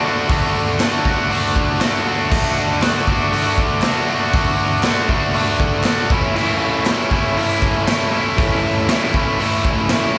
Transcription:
0.04 overdriven electric guitar D3 A3 D4 F#4
0.29 overdriven electric guitar D3 A3 D4 F#4, kick, open hi-hat
0.80 overdriven electric guitar D3 A3 D4 F#4, snare, clap, open hi-hat
1.04 overdriven electric guitar D3 A3 D4 F#4, kick
1.31 overdriven electric guitar D3 A3 D4 F#4, open hi-hat
1.56 kick
1.80 overdriven electric guitar D3 A3 D4 F#4, snare, clap, open hi-hat
2.06 overdriven electric guitar D3 A3 D4 F#4
2.30 overdriven electric guitar D3 A3 D4 F#4, kick, crash
2.81 overdriven electric guitar D3 A3 D4 F#4, snare, clap, open hi-hat
3.07 overdriven electric guitar D3 A3 D4 F#4, kick
3.32 overdriven electric guitar D3 A3 D4 F#4, open hi-hat
3.58 kick
3.82 overdriven electric guitar D3 A3 D4 F#4, snare, clap, open hi-hat
4.08 overdriven electric guitar D3 A3 D4 F#4
4.33 overdriven electric guitar D3 A3 D4 F#4, kick, open hi-hat
4.83 overdriven electric guitar D3 A3 D4 F#4, snare, clap, open hi-hat
5.09 overdriven electric guitar D3 A3 D4 F#4, kick
5.34 overdriven electric guitar D3 A3 D4 F#4, open hi-hat
5.60 kick
5.84 overdriven electric guitar D3 A3 D4 F#4, snare, clap, open hi-hat
6.10 overdriven electric guitar A2 E3 A3 C#4 E4, kick
6.35 overdriven electric guitar A2 E3 A3 C#4 E4, crash
6.85 overdriven electric guitar A2 E3 A3 C#4 E4, snare, clap, open hi-hat
7.11 overdriven electric guitar A2 E3 A3 C#4 E4, kick
7.36 overdriven electric guitar A2 E3 A3 C#4 E4, open hi-hat
7.62 kick
7.87 overdriven electric guitar A2 E3 A3 C#4 E4, snare, clap, open hi-hat
8.11 overdriven electric guitar A2 E3 A3 C#4 E4
8.37 overdriven electric guitar A2 E3 A3 C#4 E4, kick, open hi-hat
8.88 overdriven electric guitar A2 E3 A3 C#4 E4, snare, clap, open hi-hat
9.14 overdriven electric guitar A2 E3 A3 C#4 E4, kick
9.39 overdriven electric guitar A2 E3 A3 C#4 E4, open hi-hat
9.65 kick
9.89 overdriven electric guitar A2 E3 A3 C#4 E4, snare, clap, open hi-hat

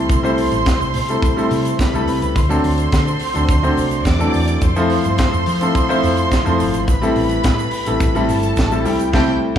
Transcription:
Already playing: grand piano G3 A3 C4 E4 A4, violin section C5 C6
0.09 fingered electric bass C2, kick, closed hi-hat, shaker
0.23 grand piano G3 A3 C4 E4 C5, shaker
0.38 open hi-hat
0.52 fingered electric bass A1, closed hi-hat, shaker
0.66 kick, snare, clap, closed hi-hat, shaker
0.80 fingered electric bass C2, shaker
0.94 fingered electric bass C3, open hi-hat, shaker
1.09 grand piano G3 A3 C4 E4 A4, closed hi-hat, shaker
1.22 kick, closed hi-hat, shaker
1.36 grand piano G3 A3 C4 E4 A4, shaker
1.51 fingered electric bass C3, open hi-hat, shaker
1.65 closed hi-hat, shaker
1.79 violin section B4 B5, kick, snare, clap, closed hi-hat, shaker
1.93 fingered electric bass C2, grand piano G3 A3 C4 E4 A4, shaker
2.08 fingered electric bass C2, open hi-hat, shaker
2.22 fingered electric bass C#2, closed hi-hat, shaker
2.36 fingered electric bass D2, violin section C5 C6, kick, closed hi-hat, shaker
2.49 grand piano F#3 A3 C4 D4 A4, shaker
2.64 fingered electric bass D2, open hi-hat
2.78 closed hi-hat, shaker
2.92 fingered electric bass D3, kick, snare, clap, closed hi-hat, shaker
3.08 shaker
3.20 open hi-hat, shaker
3.34 fingered electric bass D2, grand piano F#3 A3 C4 D4 A4, closed hi-hat, shaker
3.49 fingered electric bass D2, kick, closed hi-hat, shaker
3.63 grand piano F#3 A3 C4 D4 C5, shaker
3.77 fingered electric bass C2, open hi-hat, shaker
3.91 closed hi-hat, shaker
4.05 fingered electric bass E2, violin section D5 D6, kick, snare, clap, closed hi-hat, shaker
4.19 grand piano E3 A3 C4 D4 A4, shaker
4.26 grand piano F#3
4.34 fingered electric bass E2, open hi-hat, shaker
4.48 closed hi-hat, shaker
4.61 fingered electric bass F2, violin section C5 C6, kick, closed hi-hat, shaker
4.76 grand piano F3 A3 C4 E4 A4, shaker
4.90 open hi-hat
5.04 fingered electric bass G2, closed hi-hat, shaker
5.18 kick, snare, clap, closed hi-hat, shaker
5.33 fingered electric bass F2, shaker
5.46 fingered electric bass F3, open hi-hat, shaker
5.61 grand piano F3 A3 C4 E4 A4, closed hi-hat, shaker
5.75 kick, closed hi-hat, shaker
5.89 grand piano F3 A3 C4 E4 C5, shaker
6.03 fingered electric bass F2, open hi-hat, shaker
6.17 closed hi-hat, shaker
6.31 kick, snare, clap, closed hi-hat, shaker
6.45 fingered electric bass F2, grand piano F3 A3 C4 E4 A4, shaker
6.60 fingered electric bass G1, open hi-hat, shaker
6.74 fingered electric bass G#1, closed hi-hat, shaker
6.88 fingered electric bass A1, violin section B4 B5, kick, closed hi-hat, shaker
7.02 grand piano G3 A3 C4 E4 A4, shaker
7.16 fingered electric bass A1, open hi-hat
7.29 closed hi-hat, shaker
7.44 fingered electric bass A2, kick, snare, clap, closed hi-hat, shaker
7.59 shaker
7.71 open hi-hat, shaker
7.86 fingered electric bass A1, grand piano G3 A3 C4 E4 A4, closed hi-hat, shaker
8.00 fingered electric bass A1, kick, closed hi-hat, shaker
8.15 grand piano G3 A3 C4 E4 A4, shaker
8.29 fingered electric bass G1, violin section A4 A5, open hi-hat, shaker
8.43 closed hi-hat, shaker
8.56 fingered electric bass A1, kick, snare, clap, closed hi-hat, shaker
8.72 grand piano G3 A3 C4 E4 A4, shaker
8.84 fingered electric bass C2, grand piano G3 A3 C4 E4 A4, violin section G4 G5, open hi-hat, shaker
8.99 closed hi-hat, shaker
9.12 fingered electric bass C2, grand piano G3 A3 C4 E4 A4, violin section G4 G5, kick, snare, crash

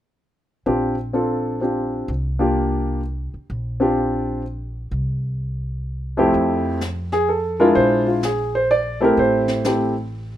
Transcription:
0.66 upright bass A#1, grand piano C4 D4 F4 G4
1.13 grand piano C4 D4 F4 A4
1.61 grand piano C4 D4 F4 G4
2.08 upright bass C2
2.39 grand piano A#3 D4 F4 G4
3.34 muted upright bass stroke
3.50 upright bass A#1
3.80 grand piano C4 D4 F4 G4
4.91 upright bass C2
6.17 grand piano F2 A3 C4 E4 G4
6.34 upright bass F2, brush sweep
6.81 snare, hi-hat pedal
7.12 grand piano G#4, snare
7.29 grand piano A4
7.60 grand piano G#3 D4 E4 F4 A#4
7.75 upright bass A#1, grand piano C5, brush sweep
8.07 grand piano F4
8.23 grand piano G#4, snare, hi-hat pedal
8.55 grand piano C5
8.71 grand piano D5
9.01 grand piano A3 C4 E4 G4 A#4
9.17 upright bass A1, grand piano C5, brush sweep
9.48 snare
9.64 grand piano A3 C4 E4 G4, snare, hi-hat pedal

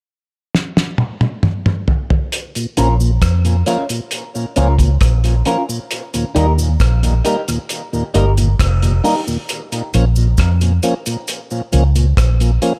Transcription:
0.55 snare
0.77 snare
0.98 high tom
1.21 high tom
1.43 mid tom
1.66 mid tom
1.88 floor tom
2.10 floor tom
2.32 closed hi-hat, cabasa
2.55 tonewheel organ A#2, closed hi-hat, cabasa
2.77 fingered electric bass A#1, tonewheel organ F3 A#3 C#4, clean electric guitar C#4 F4 A#4, closed hi-hat, cabasa
3.00 tonewheel organ A#2, cabasa
3.22 fingered electric bass F2, kick, cross-stick, closed hi-hat, cabasa
3.45 tonewheel organ A#2, closed hi-hat, cabasa
3.66 tonewheel organ F3 A#3 C#4, clean electric guitar C#4 F4 A#4, closed hi-hat, cabasa
3.89 tonewheel organ A#2, closed hi-hat, cabasa
4.11 closed hi-hat, cabasa
4.35 tonewheel organ A#2, cabasa
4.56 fingered electric bass C#2, tonewheel organ F3 A#3 C#4, clean electric guitar C#4 F4 A#4, closed hi-hat, cabasa
4.79 tonewheel organ A#2, muted clean electric guitar stroke, kick, closed hi-hat, cabasa
5.01 fingered electric bass A#1, kick, cross-stick, closed hi-hat, cabasa
5.24 tonewheel organ A#2, closed hi-hat, cabasa
5.45 tonewheel organ F3 A#3 C#4, clean electric guitar C#4 F4 A#4, closed hi-hat, cabasa
5.69 tonewheel organ A#2, cabasa
5.91 closed hi-hat, cabasa
6.14 tonewheel organ D#2 A#2, closed hi-hat, cabasa
6.35 fingered electric bass D#2, tonewheel organ G3 A#3 D#4, clean electric guitar D#4 G4 A#4, closed hi-hat, cabasa
6.58 tonewheel organ D#2 A#2, cabasa
6.80 fingered electric bass A#1, kick, cross-stick, closed hi-hat, cabasa
7.03 tonewheel organ D#2 A#2, closed hi-hat, cabasa
7.25 tonewheel organ G3 A#3 D#4, clean electric guitar D#4 G4 A#4, closed hi-hat, cabasa
7.48 tonewheel organ D#2 A#2, closed hi-hat, cabasa
7.69 closed hi-hat, cabasa
7.93 tonewheel organ D#2 A#2, cabasa
8.14 fingered electric bass G1, tonewheel organ G3 A#3 D#4, clean electric guitar D#4 G4 A#4, closed hi-hat, cabasa
8.37 tonewheel organ D#2 A#2, closed hi-hat, cabasa
8.59 fingered electric bass F1, kick, cross-stick, closed hi-hat, cabasa
8.82 tonewheel organ D#2 A#2, closed hi-hat, cabasa
9.04 tonewheel organ G3 A#3 D#4, clean electric guitar D#4 G4 A#4, open hi-hat, cabasa
9.27 tonewheel organ D#2 A#2, cabasa
9.49 closed hi-hat, cabasa
9.72 tonewheel organ A#2, closed hi-hat, cabasa
9.94 fingered electric bass A#1, tonewheel organ F3 A#3 C#4, closed hi-hat, cabasa
10.16 tonewheel organ A#2, cabasa
10.38 fingered electric bass F2, kick, cross-stick, closed hi-hat, cabasa
10.61 tonewheel organ A#2, closed hi-hat, cabasa
10.83 tonewheel organ F3 A#3 C#4, closed hi-hat, cabasa
11.06 tonewheel organ A#2, closed hi-hat, cabasa
11.28 closed hi-hat, cabasa
11.51 tonewheel organ A#2, cabasa
11.72 fingered electric bass C#2, tonewheel organ F3 A#3 C#4, closed hi-hat, cabasa
11.95 tonewheel organ A#2, closed hi-hat, cabasa
12.17 fingered electric bass A#1, kick, cross-stick, closed hi-hat, cabasa
12.40 tonewheel organ A#2, closed hi-hat, cabasa
12.62 tonewheel organ F3 A#3 C#4, closed hi-hat, cabasa

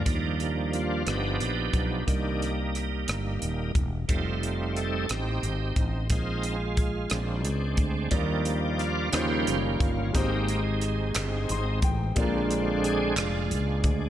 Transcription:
0.05 fretless electric bass D#2, tonewheel organ F3 G3 A#3 D4 D#4, kick, closed hi-hat
0.40 closed hi-hat
0.73 tonewheel organ F4, closed hi-hat
1.06 fretless electric bass G1, tonewheel organ F3 B3 D4 D#4 G4, cross-stick, closed hi-hat
1.40 fretless electric bass A#1, closed hi-hat
1.73 fretless electric bass B1, kick, closed hi-hat
2.07 fretless electric bass C2, tonewheel organ D#3 G3 A#3 D4 D#4, kick, closed hi-hat
2.42 closed hi-hat
2.75 cross-stick, closed hi-hat
3.08 fretless electric bass G1, cross-stick, closed hi-hat
3.42 fretless electric bass D#1, closed hi-hat
3.75 fretless electric bass E1, kick, closed hi-hat
4.08 fretless electric bass F1, tonewheel organ G3 A3 C4 D#4 F4, kick, closed hi-hat
4.43 closed hi-hat
4.76 tonewheel organ A4, closed hi-hat
5.09 fretless electric bass A1, tonewheel organ C4 D#4 G4, cross-stick, closed hi-hat
5.43 fretless electric bass G#1, closed hi-hat
5.76 fretless electric bass A1, kick, closed hi-hat
6.10 fretless electric bass A#1, tonewheel organ G#3 C4 D#4 F4, kick, closed hi-hat
6.43 closed hi-hat
6.77 kick, closed hi-hat
7.10 fretless electric bass A#1, tonewheel organ G#3 C4 D4, cross-stick, closed hi-hat
7.45 fretless electric bass C#2, closed hi-hat
7.77 fretless electric bass D2, kick, closed hi-hat
8.11 fretless electric bass D#2, grand piano D#3 G3 A#3 D4 D#4 A#4, tonewheel organ F3 G3 A#3 D#4 D5, kick, closed hi-hat
8.45 closed hi-hat
8.78 tonewheel organ F4, cross-stick, closed hi-hat
9.12 fretless electric bass D#2, tonewheel organ C#3 F3 G3 A#3 C#4 G4 C5, grand piano D#3 G3 C#4 D#4 F4 C5, cross-stick, clap, closed hi-hat
9.47 fretless electric bass F#1, closed hi-hat
9.79 fretless electric bass G1, tonewheel organ F4, kick, closed hi-hat
10.13 fretless electric bass G#1, grand piano G#2 G#3 C4 D#4 G4, tonewheel organ G#3 A#3 C4 D#4 G4, kick, closed hi-hat
10.18 grand piano C5
10.48 closed hi-hat
10.81 cross-stick, closed hi-hat
11.15 fretless electric bass G1, cross-stick, clap, closed hi-hat
11.49 fretless electric bass G#1, grand piano C6, closed hi-hat
11.82 fretless electric bass A1, grand piano G5, kick, closed hi-hat
12.15 fretless electric bass A#1, grand piano A#2 G#3 A#3 D4 F4, tonewheel organ D3 G#3 D4 F4, kick, closed hi-hat
12.20 tonewheel organ C4, grand piano A#4
12.51 closed hi-hat
12.84 tonewheel organ G#4, closed hi-hat
13.16 fretless electric bass F1, tonewheel organ G#3 D4 F4, cross-stick, clap, closed hi-hat
13.50 fretless electric bass C#2, closed hi-hat
13.84 fretless electric bass D2, kick, closed hi-hat

